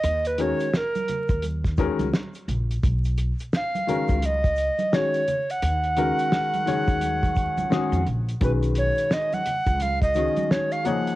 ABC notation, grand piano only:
X:1
M:4/4
L:1/8
Q:"Swing 16ths" 1/4=86
K:Ebm
V:1 name="Grand piano"
z [E,A,DGB] z3 [E,A,DGB] z2 | z3 [^D,A,^C^F^A] z2 [D,_A,CF^c] z | z [E,A,DGB]2 [E,A,DGd]3 [E,A,DGA] z | [^D,A,^C^F=B]3 z2 [D,A,CFA]2 [=F,^A,^D_A^c] |]